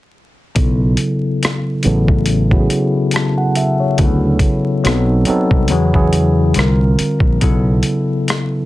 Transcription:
0.55 0.95 B1 medium
0.55 1.70 C#3 medium
0.55 1.71 F#3 medium
0.55 1.71 B3 medium
0.55 1.72 E4 medium
0.55 1.72 A4 medium
0.55 kick medium
0.55 closed hi-hat medium
0.97 closed hi-hat soft
1.43 cross-stick medium
1.43 closed hi-hat medium
1.83 2.67 A1 medium
1.83 2.42 C#3 medium
1.83 2.42 F#3 medium
1.83 2.43 B3 medium
1.83 2.43 E4 medium
1.83 2.44 A4 medium
1.83 closed hi-hat soft
2.08 kick medium
2.26 closed hi-hat medium
2.50 3.83 C#3 medium
2.50 3.83 F#3 medium
2.50 3.83 B3 medium
2.50 3.84 E4 medium
2.50 2.58 F#4 medium
2.50 kick medium
2.59 3.87 G#4 medium
2.70 closed hi-hat medium
3.11 3.35 A5 soft
3.11 closed hi-hat medium
3.16 cross-stick medium
3.38 3.56 F#5 medium
3.55 3.78 E5 medium
3.55 closed hi-hat medium
3.80 4.20 C#5 soft
3.98 4.38 D2 medium
3.98 4.84 C#3 medium
3.98 4.83 F#3 medium
3.98 4.84 B3 medium
3.98 4.85 E4 medium
3.98 4.86 A4 medium
3.98 kick medium
3.98 closed hi-hat medium
4.39 kick medium
4.39 closed hi-hat soft
4.84 5.24 B1 medium
4.84 5.23 F#3 medium
4.84 5.23 B3 medium
4.84 5.23 C4 medium
4.84 5.24 D#4 medium
4.84 5.24 A4 medium
4.84 cross-stick medium
4.84 closed hi-hat medium
5.25 5.70 F#3 medium
5.25 5.70 B3 medium
5.25 5.71 C4 medium
5.25 5.71 D#4 medium
5.25 muted fingered electric bass stroke soft
5.25 closed hi-hat soft
5.30 5.71 A4 medium
5.51 5.72 C2 medium
5.51 kick medium
5.68 6.53 E2 medium
5.68 5.90 C#3 medium
5.68 5.91 F#3 medium
5.68 5.91 B3 medium
5.68 closed hi-hat medium
5.72 5.92 E4 medium
5.72 5.92 G#4 medium
5.93 6.56 C#3 medium
5.93 6.56 F#3 medium
5.93 6.57 B3 medium
5.93 6.57 E4 medium
5.93 6.57 G#4 medium
5.93 kick medium
6.13 closed hi-hat medium
6.54 6.95 C2 medium
6.54 7.32 D3 medium
6.54 7.33 G3 medium
6.54 7.33 C4 medium
6.54 7.34 F4 medium
6.54 closed hi-hat medium
6.59 7.34 A#4 medium
6.59 cross-stick medium
6.99 closed hi-hat medium
7.20 7.39 A#1 medium
7.20 kick medium
7.41 7.81 B1 medium
7.41 8.56 C#3 medium
7.41 8.57 F#3 medium
7.41 8.57 B3 medium
7.41 8.57 E4 medium
7.41 8.58 A4 medium
7.41 kick medium
7.41 closed hi-hat medium
7.83 closed hi-hat medium
8.28 cross-stick medium
8.28 closed hi-hat medium

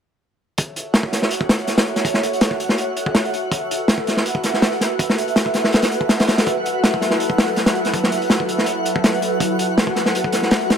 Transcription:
0.57 6.42 F#4 medium
0.57 10.78 F#4 medium
0.57 10.78 A4 medium
0.57 3.49 C#5 medium
0.57 9.37 E5 medium
0.57 10.78 F#5 medium
0.57 kick medium
0.57 closed hi-hat medium
0.76 closed hi-hat medium
0.94 snare loud
0.94 closed hi-hat medium
1.03 kick medium
1.12 snare soft
1.12 closed hi-hat medium
1.22 snare soft
1.31 closed hi-hat medium
1.41 kick medium
1.49 snare loud
1.49 closed hi-hat medium
1.59 closed hi-hat soft
1.67 snare soft
1.67 closed hi-hat medium
1.78 snare medium
1.78 closed hi-hat medium
1.86 closed hi-hat soft
1.96 snare soft
1.96 closed hi-hat medium
2.05 kick loud
2.05 closed hi-hat medium
2.14 snare soft
2.23 closed hi-hat medium
2.33 closed hi-hat soft
2.41 snare loud
2.41 closed hi-hat medium
2.51 kick medium
2.60 closed hi-hat medium
2.69 snare medium
2.78 closed hi-hat medium
2.97 closed hi-hat medium
3.06 kick medium
3.15 snare loud
3.15 closed hi-hat medium
3.25 closed hi-hat soft
3.34 closed hi-hat medium
3.51 10.78 B4 medium
3.51 kick medium
3.51 closed hi-hat medium
3.71 closed hi-hat medium
3.88 snare loud
3.88 closed hi-hat medium
3.98 kick medium
4.07 snare soft
4.07 closed hi-hat medium
4.17 snare soft
4.26 closed hi-hat medium
4.35 kick medium
4.43 snare soft
4.43 closed hi-hat medium
4.54 snare soft
4.62 snare loud
4.62 closed hi-hat medium
4.73 closed hi-hat soft
4.81 snare soft
4.81 closed hi-hat medium
4.99 kick loud
4.99 closed hi-hat medium
5.10 snare medium
5.18 closed hi-hat medium
5.28 closed hi-hat soft
5.36 snare loud
5.36 closed hi-hat medium
5.46 kick medium
5.54 snare soft
5.54 closed hi-hat medium
5.64 snare medium
5.72 snare medium
5.72 closed hi-hat medium
5.82 snare medium
5.82 closed hi-hat medium
5.92 closed hi-hat medium
6.01 kick medium
6.09 snare loud
6.09 closed hi-hat medium
6.20 snare medium
6.20 closed hi-hat medium
6.28 snare medium
6.28 closed hi-hat medium
6.38 snare medium
6.38 closed hi-hat medium
6.46 10.78 F#3 medium
6.46 10.78 E4 medium
6.46 kick loud
6.46 closed hi-hat medium
6.66 closed hi-hat medium
6.84 snare loud
6.84 closed hi-hat medium
6.94 kick medium
7.01 snare soft
7.01 closed hi-hat medium
7.11 snare soft
7.20 closed hi-hat medium
7.30 kick medium
7.38 snare loud
7.38 closed hi-hat medium
7.48 closed hi-hat soft
7.56 snare soft
7.56 closed hi-hat medium
7.66 snare medium
7.66 closed hi-hat medium
7.75 closed hi-hat soft
7.85 snare soft
7.85 closed hi-hat medium
7.94 kick medium
7.94 closed hi-hat medium
8.04 snare soft
8.12 closed hi-hat medium
8.22 closed hi-hat soft
8.30 snare loud
8.30 closed hi-hat medium
8.40 kick medium
8.49 closed hi-hat medium
8.58 snare soft
8.66 closed hi-hat medium
8.85 closed hi-hat medium
8.96 kick medium
9.04 snare loud
9.04 closed hi-hat medium
9.14 closed hi-hat soft
9.22 closed hi-hat medium
9.40 10.78 F#5 medium
9.40 kick loud
9.40 closed hi-hat medium
9.59 closed hi-hat medium
9.78 snare loud
9.78 closed hi-hat medium
9.87 kick medium
9.96 snare soft
9.96 closed hi-hat medium
10.06 snare soft
10.15 closed hi-hat medium
10.24 kick medium
10.32 snare soft
10.32 closed hi-hat medium
10.42 snare soft
10.51 snare loud
10.51 closed hi-hat medium
10.61 closed hi-hat soft
10.70 snare loud
10.70 closed hi-hat medium

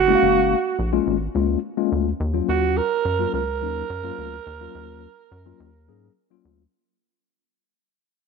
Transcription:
0.00 0.15 F#1 loud
0.00 0.79 F#4 medium
0.08 0.54 G#3 medium
0.08 0.54 A#3 medium
0.08 0.54 C#4 medium
0.08 0.15 E4 medium
0.15 0.57 F5 medium
0.23 0.54 F#1 medium
0.79 1.00 A#1 medium
0.92 1.15 G#3 loud
0.92 1.16 A#3 medium
0.92 1.16 C#4 medium
0.92 1.16 F4 loud
1.07 1.28 G#1 loud
1.35 1.56 C#2 medium
1.35 1.58 G#3 medium
1.35 1.58 A#3 medium
1.35 1.58 C#4 medium
1.35 1.58 F4 medium
1.77 2.08 G#3 loud
1.77 2.08 A#3 medium
1.77 2.08 C#4 medium
1.77 2.08 F4 loud
1.92 2.13 D2 medium
2.20 2.41 D#2 loud
2.34 2.80 F#3 medium
2.34 2.80 A#3 medium
2.34 2.80 C#4 medium
2.34 2.80 F4 medium
2.49 2.80 D#2 loud
2.49 2.79 F#4 medium
2.77 3.34 A#4 loud
3.05 3.26 F#2 medium
3.19 3.42 F#3 medium
3.19 3.42 A#3 medium
3.19 3.42 C#4 medium
3.19 3.42 F4 medium
3.33 3.63 C#2 loud
3.33 6.13 A#4 loud
3.61 3.83 D#2 loud
3.61 3.84 F#3 medium
3.61 3.84 A#3 medium
3.61 3.85 C#4 medium
3.61 3.85 D#4 medium
3.90 4.11 F#2 loud
4.03 4.34 F#3 medium
4.03 4.34 A#3 loud
4.03 4.34 C#4 medium
4.03 4.35 F4 loud
4.18 4.39 D2 medium
4.47 4.68 D#2 loud
4.61 5.06 F#3 medium
4.61 5.06 A#3 medium
4.61 5.07 C#4 medium
4.61 5.07 F4 loud
4.75 5.07 D#2 loud
5.32 5.53 F#2 loud
5.46 5.68 F#3 loud
5.46 5.69 A#3 medium
5.46 5.69 C#4 medium
5.46 5.69 F4 loud
5.60 5.90 D#2 loud
5.88 6.09 G#2 medium
5.88 6.11 F#3 medium
5.88 6.11 A#3 medium
5.88 6.11 C#4 medium
5.88 6.11 G#4 medium
6.31 6.61 F#3 loud
6.31 6.61 A#3 medium
6.31 6.61 C#4 medium
6.31 6.61 F4 loud
6.45 6.66 D2 medium

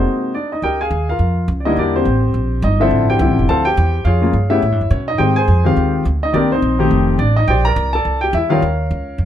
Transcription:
0.00 0.33 C3 medium
0.00 0.33 G#3 medium
0.00 0.33 A#3 soft
0.00 0.49 D#4 soft
0.00 0.33 F#4 medium
0.00 0.32 C5 medium
0.35 0.51 D4 medium
0.35 0.51 D5 medium
0.52 0.63 D#4 medium
0.52 0.62 D#5 medium
0.62 0.90 C#2 medium
0.62 0.80 G4 medium
0.62 0.80 A#4 medium
0.62 0.80 D#5 medium
0.62 0.79 G5 medium
0.81 1.07 G#4 medium
0.81 1.08 F5 medium
0.81 1.07 G#5 medium
0.91 1.18 D#2 medium
1.09 1.47 F4 medium
1.09 1.47 A#4 medium
1.09 1.46 F5 medium
1.19 1.47 F2 medium
1.48 1.76 C#2 medium
1.60 1.65 D5 medium
1.65 2.04 D3 medium
1.65 2.04 G3 medium
1.65 2.04 A#3 medium
1.65 1.77 D#4 medium
1.65 2.04 E4 medium
1.65 1.77 D#5 medium
1.76 2.05 E2 medium
1.76 1.95 D4 medium
1.76 1.95 G4 medium
1.76 1.95 A#4 medium
1.76 1.96 D5 medium
1.96 2.60 C4 medium
1.96 2.60 G4 medium
1.96 2.66 C5 medium
2.05 2.33 A1 medium
2.34 2.62 A#1 medium
2.62 2.90 G1 medium
2.62 2.80 D#4 medium
2.62 2.81 D#5 medium
2.80 3.18 D3 medium
2.80 3.18 F3 medium
2.80 3.18 C4 medium
2.80 3.18 E4 medium
2.80 3.08 A4 medium
2.80 3.08 C5 medium
2.80 3.07 E5 medium
2.91 3.19 A1 medium
3.10 3.47 G4 medium
3.10 3.47 C5 medium
3.10 3.46 G5 medium
3.19 3.29 C2 medium
3.19 3.62 D3 medium
3.19 3.62 F3 medium
3.19 3.63 C4 medium
3.19 3.63 E4 medium
3.29 3.38 A1 medium
3.39 3.48 F1 medium
3.49 3.76 D2 medium
3.49 3.66 A4 medium
3.49 3.65 C5 medium
3.49 3.65 F5 medium
3.49 3.66 A5 loud
3.65 4.03 G4 medium
3.65 4.03 C5 medium
3.65 4.06 G5 loud
3.77 4.04 E2 medium
4.05 4.33 F2 medium
4.05 4.21 F4 medium
4.05 4.48 G#4 medium
4.05 4.49 C#5 medium
4.05 4.52 F5 medium
4.21 4.32 C#3 medium
4.21 4.33 G#3 medium
4.21 4.33 A#3 medium
4.21 4.33 F4 medium
4.33 4.61 G2 medium
4.50 4.61 C#3 medium
4.50 4.61 A3 medium
4.50 4.61 B3 medium
4.50 4.89 E4 medium
4.50 4.61 G4 medium
4.50 4.89 C#5 medium
4.50 4.92 E5 medium
4.62 4.72 A2 medium
4.72 4.80 G2 medium
4.81 4.90 E2 medium
4.91 5.19 B2 medium
4.91 5.08 C#4 medium
4.91 5.07 C#5 medium
5.08 5.20 D#4 medium
5.08 5.18 D#5 medium
5.18 5.47 G#2 medium
5.18 5.34 D#3 medium
5.18 5.35 G#3 medium
5.18 5.35 C4 medium
5.18 5.35 G4 medium
5.18 5.36 C5 medium
5.18 5.36 D#5 medium
5.18 5.35 G5 medium
5.36 5.64 G#4 medium
5.36 5.64 C5 medium
5.36 5.66 G#5 loud
5.48 5.76 F2 medium
5.64 6.02 D#3 medium
5.64 6.03 G#3 medium
5.64 6.03 C4 medium
5.64 6.04 F4 medium
5.64 6.03 G4 medium
5.64 6.04 C5 medium
5.64 6.03 F5 medium
5.76 6.04 D#2 medium
6.05 6.33 D2 medium
6.23 6.35 D#4 medium
6.23 6.34 D#5 medium
6.33 6.62 C2 medium
6.33 6.49 D#3 medium
6.33 6.49 A#3 medium
6.33 6.49 C4 medium
6.33 6.51 D4 medium
6.33 6.50 G4 medium
6.33 6.51 A#4 medium
6.33 6.51 D5 medium
6.52 6.78 C4 medium
6.52 7.17 D#4 medium
6.52 7.16 C5 medium
6.62 6.90 A#1 medium
6.79 7.17 D#3 medium
6.79 7.17 A3 medium
6.79 7.17 C4 medium
6.79 7.17 G4 medium
6.91 7.18 F1 medium
7.19 7.47 A1 medium
7.19 7.36 D4 medium
7.19 7.35 D5 medium
7.36 7.48 D#4 medium
7.36 7.48 D#5 medium
7.48 7.75 A#1 medium
7.48 7.65 G4 medium
7.48 7.65 C5 medium
7.48 7.65 D5 medium
7.48 7.64 G5 loud
7.65 7.93 A#4 medium
7.65 7.93 D5 medium
7.65 7.92 A#5 loud
7.76 8.04 C2 medium
7.93 8.21 A4 medium
7.93 8.21 D5 medium
7.93 8.20 A5 loud
8.05 8.32 C2 medium
8.21 8.34 G4 medium
8.21 8.33 G5 medium
8.33 8.61 E2 medium
8.33 8.51 E4 medium
8.33 8.52 E5 medium
8.49 8.60 D#3 medium
8.49 8.61 G3 medium
8.49 8.61 C#4 medium
8.49 8.61 F4 medium
8.49 9.25 A#4 medium
8.49 9.25 C#5 medium
8.49 9.25 F5 medium
8.62 8.90 D#2 medium
8.91 9.18 C#2 medium
9.18 9.25 F2 medium

